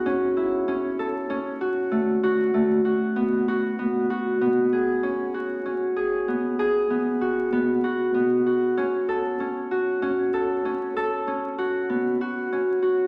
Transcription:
X:1
M:7/8
L:1/8
Q:1/4=96
K:F#m
V:1 name="Harp"
C E C A C F A, | F A, F B, F B, F | B, G C F C G B, | G B, F B, F B, F |
C A C F C A C | A C F B, F C F |]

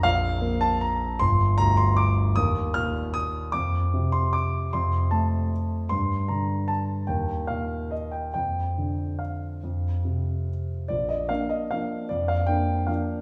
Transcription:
X:1
M:3/4
L:1/8
Q:1/4=151
K:Bb
V:1 name="Grand piano"
f3 a b2 | c'2 b c' d'2 | e'2 f'2 e'2 | d'3 c' d'2 |
c'2 a z3 | c'2 b2 a2 | g2 f2 e g | g4 f2- |
f4- f z | d e f e f2 | d f g2 f2 |]
V:2 name="Grand piano" clef=bass
[B,,,F,,]2 B,4 | G,,,2 D,,4 | E,,2 B,,4 | F,,2 C,4 |
F,,2 A,4 | G,,2 D,4 | E,,2 B,,4 | F,,2 D,4 |
F,,2 C,4 | B,,,2 [B,D]2 [F,B,D]2 | F,,2 [B,D]2 [F,B,D]2 |]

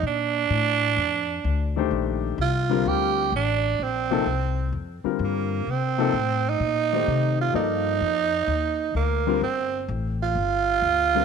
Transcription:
X:1
M:4/4
L:1/8
Q:"Swing" 1/4=128
K:Gm
V:1 name="Tenor saxophone"
D6- D z | z2 F2 G2 D2 | C4 z2 B,2 | C3 E4 F |
E6 B,2 | C2 z F4- F |]
V:2 name="Grand piano"
z6 z [E,A,DGc]- | [E,A,DGc]2 z [D,G,CFB]3 z2 | z [C,F,B,EA] z3 [D,G,CFB]3 | z [C,F,B,EA] z3 [E,A,Gcd]3 |
[F,B,EAd]3 z4 [D,G,CFB] | z6 z [D,G,CFB] |]
V:3 name="Upright bass" clef=bass
B,,2 A,,2 F,,2 D,,2 | B,,,2 C,,2 D,,2 A,,,2 | B,,,2 C,,2 F,, z G,,2 | C,2 A,,2 B,,2 C,2 |
G,,2 F,,2 E,,2 D,,2 | G,,,2 A,,,2 G,,,2 D,,2 |]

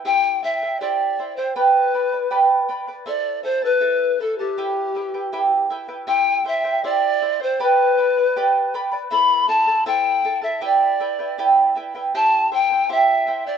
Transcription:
X:1
M:2/4
L:1/16
Q:1/4=80
K:Clyd
V:1 name="Pan flute"
g2 e2 d3 c | B6 z2 | d2 c B3 A G- | G6 z2 |
g2 e2 d3 c | B6 z2 | b2 a2 g3 e | d6 z2 |
a2 g2 e3 d |]
V:2 name="Charango"
[EGceg]2 [Eceg] [Ecg] [EGceg]2 [Eceg] [Ecg] | [GBdgb]2 [Bdgb] [Bdb] [GBdgb]2 [Bdgb] [Bdb] | [EAcea]2 [EAea] [EAa] [EAea]2 [EAea] [EAa] | [EGBeg]2 [EBeg] [EBg] [EGBeg]2 [EBeg] [EBg] |
[EGceg]2 [Eceg] [Ecg] [EGceg]2 [Eceg] [Ecg] | [GBdgb]2 [Bdgb] [Bdb] [GBdgb]2 [Bdgb] [Bdb] | [EAcea]2 [EAea] [EAa] [EAcea]2 [EAea] [EAa] | [EGBeg]2 [EBeg] [EBg] [EGBeg]2 [EBeg] [EBg] |
[EGceg]2 [Eceg] [Ecg] [EGceg]2 [Eceg] [Ecg] |]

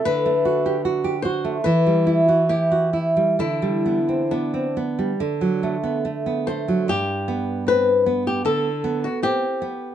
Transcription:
X:1
M:4/4
L:1/16
Q:1/4=73
K:G
V:1 name="Nylon-string guitar"
B6 c2 B4 G4 | E4 D8 z2 c2 | G4 B3 G A3 F G4 |]
V:2 name="Nylon-string guitar"
D, A, F G F G F A, E, G, E F E F E G, | D, G, B, C B, C B, G, D, F, A, B, A, B, A, F, | G,,2 B,2 C2 B,2 D,2 B,2 C2 B,2 |]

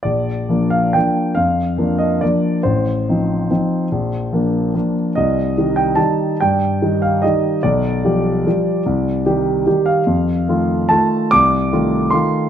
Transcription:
X:1
M:3/4
L:1/8
Q:1/4=145
K:Bb
V:1 name="Grand piano"
d3 f g2 | f3 e d2 | c6- | c4- c z |
e3 g a2 | g3 f e2 | d6- | d4- d f- |
f4 a2 | d'4 c'2 |]
V:2 name="Grand piano" clef=bass
B,,,2 [F,B,D]2 [F,B,D]2 | F,,2 [F,B,D]2 [F,B,D]2 | A,,,2 [F,CE]2 [F,CE]2 | B,,,2 [F,B,D]2 [F,B,D]2 |
C,,2 [E,G,E]2 [E,G,E]2 | G,,2 [E,G,E]2 [E,G,E]2 | =B,,,2 [F,G,G]2 [F,G,G]2 | C,,2 [E,G,G]2 [E,G,G]2 |
F,,2 [E,A,F]2 [E,A,F]2 | C,,2 [E,A,F]2 [E,A,F]2 |]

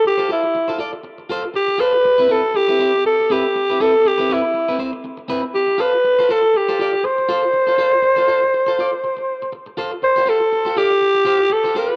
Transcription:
X:1
M:4/4
L:1/16
Q:"Swing 16ths" 1/4=120
K:Gmix
V:1 name="Alto saxophone"
G2 E4 z6 G2 B2- | B2 A2 G4 A2 G4 A2 | G2 E4 z6 G2 B2- | B2 A2 G4 c8- |
c12 z4 | c2 A4 G6 A2 B2 |]
V:2 name="Clean electric guitar"
z [FAc] [FAc] z2 [FAc] [FAd] z3 [FAc] z3 [FAc] z | z [CEB] [CEB] z2 [CEB] [CEc] z3 [CEB] z2 [CEB] [CEB] z | z [CEB] [CEB] z2 [CEB] [CEc] z3 [CEB] z3 [FAc] z | z [FAc] [FAc] z2 [FAc] [FAd] z3 [FAc] z2 [FAc] [FAc] z |
z [FAc] [FAc] z2 [FAc] [FAd] z6 z [FAc] z | z [FGc] [FGc] z2 [FGc] [FGd] z3 [FGc] z2 [FGc] [FGc] z |]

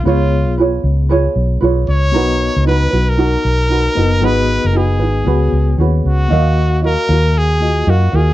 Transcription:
X:1
M:4/4
L:1/16
Q:"Swing 16ths" 1/4=115
K:Ebm
V:1 name="Trumpet"
F4 z8 z2 d2- | d4 =B3 ^A8- A | c3 B A8 z2 G2- | G4 B4 A4 G2 A2 |]
V:2 name="Ukulele"
[FAcd]4 [FAcd]4 [FAcd]4 [FAcd]4 | [^D^F^A=B]4 [DFAB]2 [DFB]2 [DFA]4 [DFAB]2 [DFB]2 | [EGAc]4 [EGAc]2 [EGc]2 [DGAc]4 [DGAc]4 | [GBef]4 [GBef]2 [GBf]6 [GBef]2 [GBf]2 |]
V:3 name="Reed electric piano"
[CFAd]16 | [=B,^F^d^a]12- [B,Fda]2 [B,F^Ad]2 | [CGAe]8 [CGAd]8 | [B,Gef]8- [B,Gef]2 [B,FGe]6 |]
V:4 name="Fingered electric bass" clef=bass
D,,3 C,,3 D,,4 C,,2 C,,2 D,,2 | =B,,,3 D,,3 B,,,4 B,,,4 ^F,,,2 | A,,,3 G,,,3 A,,,2 D,,2 D,,2 E,,2 D,,2 | E,,4- E,, z E,,6 G,,2 E,,2 |]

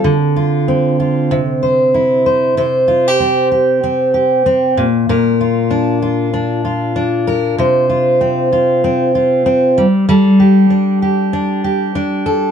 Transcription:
X:1
M:4/4
L:1/16
Q:"Swing 16ths" 1/4=96
K:Cmix
V:1 name="Steel-string acoustic guitar"
D,2 F2 C2 F2 C,2 c2 E2 c2 | [C,c]2 F G C2 G2 C2 G2 C2 B,,2 | [B,,B]2 F2 D2 F2 D2 F2 D2 B2 | [C,c]2 F2 C2 F2 C2 F2 C2 G,2 |
[G,A]2 G2 D2 G2 D2 G2 D2 A2 |]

